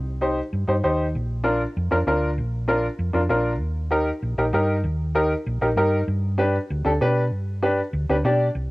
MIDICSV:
0, 0, Header, 1, 3, 480
1, 0, Start_track
1, 0, Tempo, 308642
1, 1779, Time_signature, 4, 2, 24, 8
1, 13543, End_track
2, 0, Start_track
2, 0, Title_t, "Upright piano"
2, 0, Program_c, 0, 0
2, 328, Note_on_c, 0, 63, 78
2, 335, Note_on_c, 0, 67, 74
2, 343, Note_on_c, 0, 72, 88
2, 586, Note_off_c, 0, 63, 0
2, 589, Note_off_c, 0, 67, 0
2, 593, Note_off_c, 0, 72, 0
2, 1049, Note_on_c, 0, 63, 76
2, 1062, Note_on_c, 0, 67, 70
2, 1067, Note_on_c, 0, 72, 87
2, 1138, Note_off_c, 0, 63, 0
2, 1145, Note_off_c, 0, 67, 0
2, 1147, Note_off_c, 0, 72, 0
2, 1300, Note_on_c, 0, 63, 79
2, 1306, Note_on_c, 0, 72, 88
2, 1309, Note_on_c, 0, 67, 77
2, 1636, Note_off_c, 0, 63, 0
2, 1639, Note_off_c, 0, 72, 0
2, 1640, Note_off_c, 0, 67, 0
2, 2234, Note_on_c, 0, 62, 86
2, 2241, Note_on_c, 0, 65, 78
2, 2243, Note_on_c, 0, 70, 90
2, 2499, Note_off_c, 0, 62, 0
2, 2502, Note_off_c, 0, 65, 0
2, 2503, Note_off_c, 0, 70, 0
2, 2967, Note_on_c, 0, 62, 79
2, 2973, Note_on_c, 0, 65, 71
2, 2979, Note_on_c, 0, 70, 91
2, 3058, Note_off_c, 0, 62, 0
2, 3061, Note_off_c, 0, 65, 0
2, 3064, Note_off_c, 0, 70, 0
2, 3216, Note_on_c, 0, 62, 77
2, 3223, Note_on_c, 0, 65, 74
2, 3228, Note_on_c, 0, 70, 92
2, 3554, Note_off_c, 0, 62, 0
2, 3558, Note_off_c, 0, 65, 0
2, 3560, Note_off_c, 0, 70, 0
2, 4162, Note_on_c, 0, 62, 81
2, 4169, Note_on_c, 0, 65, 78
2, 4175, Note_on_c, 0, 70, 94
2, 4424, Note_off_c, 0, 62, 0
2, 4427, Note_off_c, 0, 65, 0
2, 4430, Note_off_c, 0, 70, 0
2, 4870, Note_on_c, 0, 62, 80
2, 4882, Note_on_c, 0, 65, 75
2, 4886, Note_on_c, 0, 70, 80
2, 4969, Note_off_c, 0, 62, 0
2, 4975, Note_off_c, 0, 65, 0
2, 4977, Note_off_c, 0, 70, 0
2, 5120, Note_on_c, 0, 62, 79
2, 5125, Note_on_c, 0, 65, 73
2, 5134, Note_on_c, 0, 70, 89
2, 5466, Note_off_c, 0, 62, 0
2, 5469, Note_off_c, 0, 65, 0
2, 5474, Note_off_c, 0, 70, 0
2, 6075, Note_on_c, 0, 67, 77
2, 6078, Note_on_c, 0, 63, 81
2, 6090, Note_on_c, 0, 70, 93
2, 6340, Note_off_c, 0, 67, 0
2, 6342, Note_off_c, 0, 63, 0
2, 6348, Note_off_c, 0, 70, 0
2, 6812, Note_on_c, 0, 63, 77
2, 6815, Note_on_c, 0, 67, 73
2, 6820, Note_on_c, 0, 70, 86
2, 6901, Note_off_c, 0, 63, 0
2, 6902, Note_off_c, 0, 67, 0
2, 6905, Note_off_c, 0, 70, 0
2, 7044, Note_on_c, 0, 63, 82
2, 7052, Note_on_c, 0, 67, 76
2, 7065, Note_on_c, 0, 70, 90
2, 7389, Note_off_c, 0, 63, 0
2, 7393, Note_off_c, 0, 67, 0
2, 7399, Note_off_c, 0, 70, 0
2, 8006, Note_on_c, 0, 63, 77
2, 8009, Note_on_c, 0, 67, 74
2, 8016, Note_on_c, 0, 70, 96
2, 8266, Note_off_c, 0, 63, 0
2, 8267, Note_off_c, 0, 67, 0
2, 8271, Note_off_c, 0, 70, 0
2, 8731, Note_on_c, 0, 63, 81
2, 8740, Note_on_c, 0, 67, 76
2, 8743, Note_on_c, 0, 70, 85
2, 8820, Note_off_c, 0, 63, 0
2, 8825, Note_off_c, 0, 67, 0
2, 8826, Note_off_c, 0, 70, 0
2, 8976, Note_on_c, 0, 67, 71
2, 8978, Note_on_c, 0, 63, 79
2, 8983, Note_on_c, 0, 70, 97
2, 9315, Note_off_c, 0, 67, 0
2, 9316, Note_off_c, 0, 63, 0
2, 9319, Note_off_c, 0, 70, 0
2, 9921, Note_on_c, 0, 62, 83
2, 9930, Note_on_c, 0, 67, 81
2, 9939, Note_on_c, 0, 71, 94
2, 10184, Note_off_c, 0, 62, 0
2, 10188, Note_off_c, 0, 67, 0
2, 10193, Note_off_c, 0, 71, 0
2, 10650, Note_on_c, 0, 62, 79
2, 10660, Note_on_c, 0, 67, 73
2, 10667, Note_on_c, 0, 69, 93
2, 10740, Note_off_c, 0, 62, 0
2, 10745, Note_off_c, 0, 67, 0
2, 10748, Note_off_c, 0, 69, 0
2, 10906, Note_on_c, 0, 62, 84
2, 10910, Note_on_c, 0, 67, 78
2, 10916, Note_on_c, 0, 71, 97
2, 11239, Note_off_c, 0, 62, 0
2, 11242, Note_off_c, 0, 67, 0
2, 11245, Note_off_c, 0, 71, 0
2, 11862, Note_on_c, 0, 62, 89
2, 11863, Note_on_c, 0, 67, 78
2, 11872, Note_on_c, 0, 71, 91
2, 12113, Note_off_c, 0, 62, 0
2, 12114, Note_off_c, 0, 67, 0
2, 12119, Note_off_c, 0, 71, 0
2, 12593, Note_on_c, 0, 62, 83
2, 12599, Note_on_c, 0, 67, 78
2, 12605, Note_on_c, 0, 71, 88
2, 12671, Note_off_c, 0, 62, 0
2, 12674, Note_off_c, 0, 67, 0
2, 12677, Note_off_c, 0, 71, 0
2, 12831, Note_on_c, 0, 62, 86
2, 12834, Note_on_c, 0, 67, 80
2, 12842, Note_on_c, 0, 74, 92
2, 13162, Note_off_c, 0, 62, 0
2, 13164, Note_off_c, 0, 67, 0
2, 13168, Note_off_c, 0, 74, 0
2, 13543, End_track
3, 0, Start_track
3, 0, Title_t, "Fingered electric bass"
3, 0, Program_c, 1, 33
3, 0, Note_on_c, 1, 36, 99
3, 621, Note_off_c, 1, 36, 0
3, 821, Note_on_c, 1, 43, 93
3, 1012, Note_off_c, 1, 43, 0
3, 1055, Note_on_c, 1, 43, 97
3, 1249, Note_off_c, 1, 43, 0
3, 1304, Note_on_c, 1, 39, 96
3, 1791, Note_on_c, 1, 34, 101
3, 1815, Note_off_c, 1, 39, 0
3, 2555, Note_off_c, 1, 34, 0
3, 2747, Note_on_c, 1, 41, 99
3, 2936, Note_off_c, 1, 41, 0
3, 2985, Note_on_c, 1, 41, 94
3, 3175, Note_off_c, 1, 41, 0
3, 3212, Note_on_c, 1, 38, 92
3, 3699, Note_on_c, 1, 34, 106
3, 3723, Note_off_c, 1, 38, 0
3, 4468, Note_off_c, 1, 34, 0
3, 4645, Note_on_c, 1, 41, 98
3, 4843, Note_off_c, 1, 41, 0
3, 4880, Note_on_c, 1, 41, 90
3, 5080, Note_off_c, 1, 41, 0
3, 5124, Note_on_c, 1, 34, 88
3, 5603, Note_off_c, 1, 34, 0
3, 5603, Note_on_c, 1, 39, 97
3, 6379, Note_off_c, 1, 39, 0
3, 6570, Note_on_c, 1, 34, 92
3, 6766, Note_off_c, 1, 34, 0
3, 6809, Note_on_c, 1, 34, 97
3, 7006, Note_off_c, 1, 34, 0
3, 7044, Note_on_c, 1, 43, 94
3, 7525, Note_on_c, 1, 39, 110
3, 7548, Note_off_c, 1, 43, 0
3, 8300, Note_off_c, 1, 39, 0
3, 8499, Note_on_c, 1, 34, 99
3, 8692, Note_off_c, 1, 34, 0
3, 8733, Note_on_c, 1, 34, 100
3, 8929, Note_off_c, 1, 34, 0
3, 8964, Note_on_c, 1, 43, 94
3, 9355, Note_off_c, 1, 43, 0
3, 9451, Note_on_c, 1, 43, 109
3, 10223, Note_off_c, 1, 43, 0
3, 10427, Note_on_c, 1, 38, 99
3, 10617, Note_off_c, 1, 38, 0
3, 10664, Note_on_c, 1, 38, 96
3, 10855, Note_off_c, 1, 38, 0
3, 10908, Note_on_c, 1, 47, 91
3, 11376, Note_off_c, 1, 47, 0
3, 11376, Note_on_c, 1, 43, 104
3, 12146, Note_off_c, 1, 43, 0
3, 12338, Note_on_c, 1, 38, 103
3, 12531, Note_off_c, 1, 38, 0
3, 12589, Note_on_c, 1, 38, 99
3, 12778, Note_off_c, 1, 38, 0
3, 12819, Note_on_c, 1, 47, 98
3, 13204, Note_off_c, 1, 47, 0
3, 13298, Note_on_c, 1, 36, 102
3, 13543, Note_off_c, 1, 36, 0
3, 13543, End_track
0, 0, End_of_file